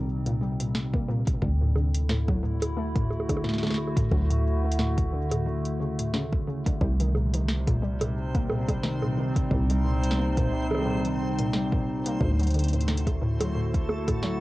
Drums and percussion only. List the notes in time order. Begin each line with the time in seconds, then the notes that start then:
0.26 closed hi-hat
0.60 closed hi-hat
0.75 snare
0.93 kick
1.27 kick, closed hi-hat
1.42 kick
1.76 high bongo
1.94 closed hi-hat
2.09 snare
2.28 kick, high bongo
2.62 closed hi-hat, high bongo
2.96 kick, closed hi-hat
3.10 high bongo
3.20 high bongo
3.29 kick, closed hi-hat, high bongo
3.37 high bongo
3.44 snare
3.49 snare
3.54 snare
3.58 snare
3.63 snare, high bongo
3.67 snare
3.71 snare, high bongo
3.74 snare, high bongo
3.87 high bongo
3.97 kick, closed hi-hat
4.12 kick
4.31 closed hi-hat
4.72 closed hi-hat
4.79 snare
4.98 kick, closed hi-hat
5.32 closed hi-hat, high bongo
5.65 closed hi-hat
5.99 closed hi-hat
6.14 snare
6.33 kick
6.66 kick, closed hi-hat
6.81 kick
7.00 closed hi-hat
7.15 high bongo
7.34 closed hi-hat
7.49 snare
7.67 kick, closed hi-hat, high bongo
8.01 closed hi-hat, high bongo
8.35 kick, closed hi-hat
8.50 high bongo
8.69 kick, closed hi-hat, high bongo
8.83 snare
9.02 high bongo
9.36 kick, closed hi-hat
9.51 kick
9.70 closed hi-hat
10.03 closed hi-hat
10.11 snare
10.37 kick, closed hi-hat
10.71 high bongo
10.75 high bongo
10.78 high bongo
10.82 high bongo
10.86 high bongo
10.90 high bongo
10.95 high bongo
11.00 high bongo
11.05 closed hi-hat
11.38 closed hi-hat
11.53 snare
11.72 kick
12.06 closed hi-hat
12.21 kick
12.39 closed hi-hat
12.43 closed hi-hat
12.47 closed hi-hat
12.50 closed hi-hat
12.54 closed hi-hat
12.59 closed hi-hat
12.64 closed hi-hat
12.68 closed hi-hat
12.73 closed hi-hat
12.81 closed hi-hat
12.88 snare, closed hi-hat
12.97 closed hi-hat
13.07 kick, closed hi-hat, high bongo
13.40 closed hi-hat, high bongo
13.74 kick, closed hi-hat
13.89 high bongo
14.08 kick, closed hi-hat, high bongo
14.23 snare